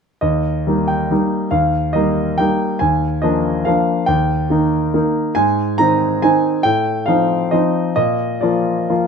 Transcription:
0.21 0.65 D#2 soft
0.21 0.88 D#5 soft
0.67 1.07 G3 soft
0.67 1.07 A#3 soft
0.67 1.08 D#4 soft
0.88 1.52 G5 soft
1.11 1.49 G3 soft
1.11 1.49 A#3 soft
1.11 1.49 D#4 soft
1.51 1.93 D#2 soft
1.51 1.94 F5 soft
1.93 2.35 G3 soft
1.93 2.35 A#3 soft
1.93 2.35 D#4 soft
1.93 2.38 D#5 soft
2.38 2.77 G3 soft
2.38 2.77 A#3 soft
2.38 2.78 D#4 soft
2.38 2.81 G5 medium
2.79 3.22 D#2 soft
2.79 3.22 G#5 medium
3.22 3.62 F3 soft
3.22 3.63 A#3 soft
3.22 3.63 D4 soft
3.22 3.66 D#5 soft
3.65 4.04 F3 soft
3.65 4.04 A#3 soft
3.65 4.04 D4 soft
3.65 4.07 F5 soft
4.06 4.49 D#2 soft
4.06 5.15 G5 medium
4.50 4.90 D#3 soft
4.50 4.90 A#3 soft
4.50 4.91 D#4 soft
4.94 5.32 D#3 soft
4.94 5.33 A#3 soft
4.94 5.33 D#4 soft
5.35 5.77 G#2 soft
5.35 5.78 G#5 medium
5.78 6.18 D#3 soft
5.78 6.19 C4 soft
5.78 6.19 D#4 soft
5.78 6.22 A#5 medium
6.22 6.61 D#3 soft
6.22 6.61 C4 soft
6.22 6.61 D#4 soft
6.22 6.64 G#5 medium
6.63 7.06 A2 soft
6.63 7.06 G5 medium
7.06 7.48 F3 soft
7.06 7.48 C4 soft
7.06 7.48 D#4 soft
7.06 7.51 F5 medium
7.51 7.93 F3 soft
7.51 7.94 C4 soft
7.51 7.94 D#4 soft
7.51 7.94 D#5 soft
7.96 8.41 A#2 soft
7.96 8.42 D#5 medium
8.41 8.86 F3 soft
8.41 8.86 A#3 soft
8.41 8.86 F4 soft
8.41 9.07 D5 soft
8.90 9.07 F3 soft
8.90 9.07 A#3 soft
8.90 9.07 F4 soft

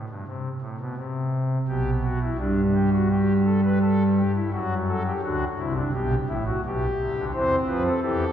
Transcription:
0.09 0.24 G2 medium
0.27 0.49 C3 medium
0.62 0.77 A2 medium
0.80 0.95 B2 medium
0.97 1.58 C3 medium
1.68 2.29 B1 medium
1.68 2.30 B2 medium
1.68 1.90 G4 medium
2.04 2.19 F#4 medium
2.22 2.37 E4 medium
2.39 4.22 G2 medium
2.39 4.22 G3 medium
2.39 2.61 D4 medium
2.74 2.90 G4 medium
2.93 3.08 F#4 medium
3.11 3.33 G4 medium
3.46 3.61 A4 medium
3.63 3.78 B4 medium
3.82 4.03 A4 medium
4.16 4.32 G4 medium
4.35 4.50 E4 medium
4.53 5.13 F#2 medium
4.53 5.13 F#3 medium
4.53 4.74 F#4 medium
4.88 5.03 A4 medium
5.06 5.21 G4 medium
5.23 5.45 D2 medium
5.23 5.44 D3 medium
5.23 5.45 F#4 medium
5.59 5.80 C2 medium
5.59 5.80 C3 medium
5.59 5.73 E4 medium
5.76 5.91 D4 medium
5.93 6.15 B1 medium
5.93 6.15 B2 medium
5.93 6.15 G4 medium
6.29 6.50 A1 medium
6.29 6.50 A2 medium
6.29 6.43 E4 medium
6.46 6.61 F#4 medium
6.65 6.86 B1 medium
6.65 6.86 B2 medium
6.65 7.25 G4 medium
6.98 7.13 C2 medium
6.98 7.13 C3 medium
7.16 7.31 D2 medium
7.16 7.31 D3 medium
7.34 7.56 E2 medium
7.34 7.55 E3 medium
7.34 7.94 C4 medium
7.34 7.55 C5 medium
7.67 7.89 F2 medium
7.67 7.89 F3 medium
7.67 7.83 B4 medium
7.85 8.00 A4 medium
8.02 8.25 E2 medium
8.02 8.24 E3 medium
8.02 8.24 G4 medium
8.02 8.32 A4 medium

